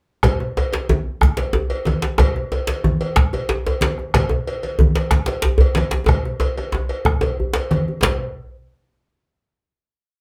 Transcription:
0.23 bombo rim medium
0.23 bombo low medium
0.23 cowbell medium
0.23 djembe tone loud
0.23 low conga medium
0.23 djembe bass medium
0.40 djembe slap medium
0.57 cowbell medium
0.57 djembe tone medium
0.73 cowbell soft
0.73 djembe slap medium
0.73 djembe tone medium
0.73 high conga soft
0.89 djembe slap medium
0.89 djembe tone medium
0.89 high conga medium
0.89 djembe bass medium
1.21 bombo rim medium
1.21 bombo low medium
1.21 djembe tone medium
1.21 low conga medium
1.37 cowbell soft
1.37 djembe slap medium
1.37 djembe tone medium
1.53 djembe tone loud
1.53 djembe bass medium
1.70 cowbell soft
1.85 cowbell soft
1.85 djembe slap medium
1.85 djembe tone medium
1.85 high conga medium
2.02 bombo rim soft
2.02 djembe slap medium
2.02 high conga soft
2.02 djembe tone medium
2.18 bombo rim medium
2.18 bombo low medium
2.18 cowbell medium
2.18 djembe tone loud
2.18 low conga medium
2.18 djembe bass medium
2.36 djembe slap soft
2.52 cowbell soft
2.52 djembe tone medium
2.67 cowbell soft
2.67 djembe slap medium
2.67 high conga soft
2.67 djembe tone soft
2.84 djembe slap medium
2.84 high conga medium
2.84 djembe bass medium
3.01 cowbell soft
3.16 bombo rim medium
3.16 bombo low medium
3.16 djembe slap medium
3.16 low conga medium
3.33 cowbell soft
3.33 djembe slap medium
3.33 djembe tone soft
3.49 djembe slap medium
3.49 djembe bass medium
3.67 cowbell soft
3.67 djembe tone medium
3.81 cowbell soft
3.81 djembe slap medium
3.81 high conga medium
3.98 bombo rim soft
3.98 djembe tone soft
3.98 high conga soft
4.14 bombo rim medium
4.14 bombo low medium
4.14 cowbell medium
4.14 djembe slap medium
4.14 djembe bass medium
4.14 low conga medium
4.29 djembe slap soft
4.29 djembe tone medium
4.47 cowbell soft
4.63 cowbell soft
4.63 djembe tone medium
4.63 high conga soft
4.79 djembe slap medium
4.79 high conga medium
4.79 djembe bass medium
4.95 cowbell soft
4.95 djembe slap medium
5.11 bombo rim medium
5.11 bombo low medium
5.11 djembe slap medium
5.11 low conga medium
5.26 cowbell soft
5.26 djembe slap medium
5.28 djembe slap medium
5.28 djembe tone medium
5.42 djembe slap medium
5.42 djembe bass medium
5.58 cowbell soft
5.58 djembe bass medium
5.75 cowbell soft
5.75 djembe slap medium
5.75 high conga medium
5.77 djembe slap medium
5.91 bombo rim soft
5.91 djembe slap medium
5.91 high conga soft
5.91 djembe tone medium
6.06 bombo rim medium
6.06 bombo low medium
6.06 cowbell medium
6.06 djembe slap soft
6.06 djembe tone loud
6.06 low conga medium
6.06 djembe bass medium
6.25 djembe slap medium
6.40 bombo rim soft
6.40 cowbell medium
6.40 djembe tone medium
6.58 bombo rim soft
6.58 cowbell soft
6.58 djembe slap soft
6.58 djembe tone medium
6.72 djembe slap medium
6.72 djembe tone medium
6.72 djembe bass medium
6.89 bombo rim soft
6.89 cowbell soft
7.05 bombo rim medium
7.05 bombo low medium
7.05 djembe tone medium
7.05 high conga soft
7.05 low conga medium
7.21 cowbell soft
7.21 djembe slap soft
7.21 djembe tone medium
7.23 djembe tone medium
7.40 djembe bass medium
7.54 bombo rim soft
7.54 cowbell soft
7.54 djembe slap medium
7.71 bombo rim soft
7.71 cowbell soft
7.71 djembe slap medium
7.71 high conga medium
7.88 djembe slap soft
7.88 high conga soft
7.88 djembe tone soft
8.03 bombo low medium
8.03 cowbell medium
8.03 djembe slap loud
8.03 low conga medium
8.03 djembe bass medium

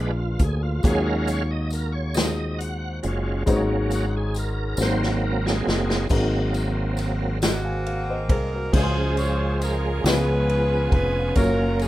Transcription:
0.00 0.36 A#1 loud
0.00 0.81 A#2 medium
0.00 0.11 G#3 medium
0.00 0.38 A#3 medium
0.00 0.12 D4 medium
0.00 0.39 D4 medium
0.00 0.39 F4 medium
0.00 0.43 F4 medium
0.00 0.39 G#4 medium
0.00 0.11 B4 soft
0.00 0.39 B4 medium
0.39 0.80 D2 medium
0.39 0.55 G#4 medium
0.39 kick medium
0.39 closed hi-hat medium
0.56 0.62 G#4 medium
0.63 0.83 F4 medium
0.83 2.99 D#2 loud
0.83 2.12 D#3 medium
0.83 1.43 F#3 medium
0.83 1.69 G#3 medium
0.83 1.43 G#3 soft
0.83 1.43 C#4 soft
0.83 1.70 D#4 medium
0.83 1.70 F4 medium
0.83 1.70 F#4 medium
0.83 1.08 G#4 medium
0.83 1.71 C#5 medium
0.83 1.44 F5 medium
0.83 kick medium
0.83 closed hi-hat medium
0.83 tambourine soft
1.06 1.29 A#4 medium
1.27 1.51 C#5 medium
1.27 closed hi-hat soft
1.27 tambourine medium
1.51 1.71 D#5 medium
1.70 1.93 A#4 medium
1.70 closed hi-hat soft
1.70 tambourine medium
1.92 2.16 C#5 medium
2.14 3.01 G#3 medium
2.14 3.01 D#4 medium
2.14 3.01 F4 medium
2.14 3.02 F#4 medium
2.14 3.02 C5 medium
2.14 2.60 D#5 medium
2.14 snare loud
2.14 closed hi-hat medium
2.14 tambourine medium
2.58 3.00 F#5 medium
2.58 closed hi-hat soft
3.03 3.44 F#1 medium
3.03 3.43 F#3 soft
3.03 3.43 G#3 soft
3.03 3.43 C#4 soft
3.03 3.43 F4 soft
3.03 closed hi-hat soft
3.46 4.75 G#1 loud
3.46 4.75 G#2 medium
3.46 4.05 F#3 medium
3.46 4.32 G#3 medium
3.46 4.06 A#3 soft
3.46 4.33 C#4 medium
3.46 4.06 C#4 medium
3.46 4.33 D#4 medium
3.46 4.34 F#4 medium
3.46 3.55 C5 medium
3.46 kick medium
3.46 closed hi-hat medium
3.46 tambourine medium
3.56 4.37 C#5 loud
3.91 4.15 F#4 medium
3.91 closed hi-hat soft
3.91 tambourine medium
4.17 4.37 G#4 medium
4.35 4.82 A#4 medium
4.35 closed hi-hat soft
4.35 tambourine medium
4.77 5.62 G#1 loud
4.77 6.06 G#2 medium
4.77 6.07 F#3 medium
4.77 5.64 G#3 medium
4.77 5.65 C4 medium
4.77 5.65 D#4 medium
4.77 5.65 F#4 medium
4.77 snare medium
4.77 tambourine medium
4.81 6.08 A#3 medium
4.81 6.07 C4 medium
4.81 5.66 A#4 medium
4.81 5.01 C5 loud
5.03 snare medium
5.24 5.46 A#4 medium
5.46 6.07 G#4 medium
5.46 snare medium
5.67 6.07 F#1 medium
5.67 snare medium
5.90 snare medium
6.09 8.29 G#1 loud
6.09 7.38 G#2 medium
6.09 7.39 F#3 medium
6.09 6.95 G#3 medium
6.09 7.38 A#3 soft
6.09 6.96 C4 medium
6.09 7.39 C4 medium
6.09 6.96 D#4 medium
6.09 6.97 F#4 medium
6.09 6.97 A#4 medium
6.09 kick medium
6.09 crash medium
6.09 tambourine soft
6.54 ride soft
6.54 tambourine medium
6.97 ride soft
6.97 tambourine medium
7.42 8.70 A#3 medium
7.42 8.70 C4 medium
7.42 8.26 F#4 loud
7.42 snare loud
7.42 ride medium
7.42 tambourine medium
7.64 7.85 F5 medium
7.64 7.85 G#5 medium
7.86 8.07 F5 medium
7.86 ride soft
8.10 8.29 C5 medium
8.10 8.29 D#5 medium
8.29 8.70 C2 medium
8.29 8.51 G#4 medium
8.29 8.74 A#4 loud
8.29 8.51 C5 medium
8.29 kick medium
8.29 ride medium
8.54 8.94 F#4 soft
8.54 8.94 A#4 medium
8.72 10.01 C#2 loud
8.72 10.02 C#3 medium
8.72 11.32 F3 medium
8.72 10.03 G#3 medium
8.72 9.59 G#3 medium
8.72 11.88 C#4 medium
8.72 9.60 C#4 medium
8.72 10.01 F4 medium
8.72 9.60 F4 medium
8.72 11.33 G#4 medium
8.72 9.18 G#4 loud
8.72 10.01 C5 medium
8.72 kick loud
8.72 crash medium
8.72 tambourine medium
8.77 8.81 B4 medium
8.83 9.63 C6 medium
9.17 9.58 C#5 loud
9.17 ride soft
9.17 tambourine medium
9.62 10.06 A#4 loud
9.62 ride soft
9.62 tambourine medium
10.04 10.88 C#2 loud
10.04 11.32 C#3 medium
10.04 10.90 G#3 medium
10.04 11.34 B3 medium
10.04 10.90 B3 medium
10.04 10.91 C#4 medium
10.04 11.32 F4 medium
10.04 10.91 F4 medium
10.04 11.32 G#4 medium
10.04 10.92 B4 loud
10.04 10.91 B4 medium
10.04 snare loud
10.04 ride medium
10.04 tambourine medium
10.49 ride soft
10.92 11.32 F1 medium
10.92 11.33 B4 loud
10.92 kick medium
10.92 ride soft
11.35 11.88 F#1 medium
11.35 11.88 F#3 medium
11.35 11.88 A#3 medium
11.35 11.88 C#4 medium
11.35 11.88 F4 medium
11.35 11.88 A#4 medium
11.35 11.79 A#4 loud
11.35 11.88 C#5 medium
11.35 kick medium
11.35 ride medium
11.35 tambourine soft
11.79 11.88 G#4 loud
11.79 ride soft
11.79 tambourine medium

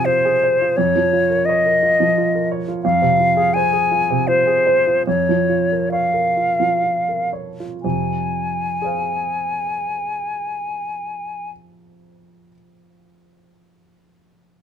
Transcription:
0.00 0.73 F2 soft
0.00 0.78 C3 soft
0.00 0.07 F4 soft
0.00 0.25 G#4 soft
0.00 0.43 C5 soft
0.05 0.35 F4 soft
0.05 0.78 C5 medium
0.25 0.52 G#4 soft
0.43 0.70 C5 soft
0.61 0.78 F4 soft
0.77 2.81 F2 soft
0.77 1.47 C#5 medium
0.96 1.23 F3 soft
1.13 1.40 F4 soft
1.30 1.57 A#4 soft
1.45 1.76 C#5 soft
1.45 2.49 D#5 medium
1.66 1.93 A#4 soft
1.83 2.09 F4 soft
2.00 2.26 F3 soft
2.18 2.44 F4 soft
2.35 2.61 A#4 soft
2.51 2.78 C#5 soft
2.68 2.84 F4 soft
2.83 5.02 F2 soft
2.83 3.55 F5 medium
3.02 3.29 C3 soft
3.19 3.47 F4 soft
3.37 3.64 G#4 soft
3.54 3.83 C5 soft
3.54 4.29 G#5 medium
3.73 4.01 G#4 soft
3.91 4.20 F4 soft
4.10 4.39 C3 soft
4.28 4.58 F4 soft
4.28 5.06 C5 medium
4.47 4.78 G#4 soft
4.66 4.98 C5 soft
4.87 5.07 F4 soft
5.07 7.80 F2 soft
5.07 5.90 C#5 soft
5.29 5.62 F3 soft
5.49 5.83 F4 soft
5.72 6.05 A#4 soft
5.92 6.27 C#5 soft
5.92 7.30 F5 soft
6.13 6.50 A#4 soft
6.37 6.74 F4 soft
6.60 6.98 F3 soft
6.84 7.23 F4 soft
7.08 7.49 A#4 soft
7.33 7.74 C#5 soft
7.60 7.84 F4 soft
7.83 11.52 F2 soft
7.83 11.51 C3 soft
7.83 11.50 G#5 soft
8.82 12.49 G#4 soft
8.82 12.51 C5 soft
8.82 12.53 F5 soft

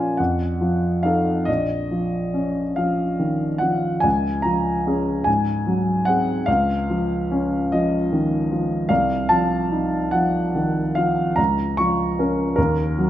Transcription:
0.00 0.13 A#2 soft
0.00 0.21 F3 soft
0.00 0.15 C#4 soft
0.00 0.15 F4 soft
0.00 0.21 F5 soft
0.00 0.19 G#5 medium
0.17 1.44 F2 soft
0.17 1.04 F#5 soft
0.61 1.30 F3 soft
1.03 1.44 D#4 soft
1.03 1.44 A4 soft
1.03 1.47 F5 soft
1.45 4.01 A#1 soft
1.45 2.78 D#5 medium
1.91 2.62 F3 soft
2.34 3.03 C#4 soft
2.76 3.45 F3 soft
2.76 3.61 F5 soft
3.19 3.62 D#3 soft
3.58 4.04 F3 soft
3.58 4.03 F#5 medium
4.00 5.23 C#2 soft
4.00 4.44 G#5 medium
4.42 5.10 F3 soft
4.42 5.25 A#5 medium
4.87 5.23 C#4 soft
4.87 5.23 G#4 soft
5.24 6.43 G#2 soft
5.24 6.06 G#5 medium
5.67 6.31 F#3 soft
6.05 6.44 C4 soft
6.05 6.44 G#4 soft
6.05 6.46 F#5 medium
6.46 8.86 C#2 soft
6.46 7.70 F5 medium
6.90 7.55 F3 soft
7.31 7.96 C#4 soft
7.72 8.36 F3 soft
7.72 8.12 D#5 medium
8.13 8.51 D#3 soft
8.52 8.90 F3 soft
8.89 11.34 C2 soft
8.89 9.30 F5 medium
9.29 9.97 F3 soft
9.29 10.13 A5 medium
9.72 10.39 D#4 soft
10.11 10.80 F3 soft
10.11 10.96 F#5 medium
10.55 10.97 D#3 soft
10.95 11.38 F3 soft
10.95 11.37 F5 medium
11.36 12.54 C#2 soft
11.36 11.77 A#5 medium
11.77 12.42 F3 soft
11.77 12.57 C#6 medium
12.19 12.54 C#4 soft
12.19 12.54 A#4 soft
12.56 13.10 D#2 soft
12.56 13.10 A#4 medium
12.98 13.10 F#3 soft

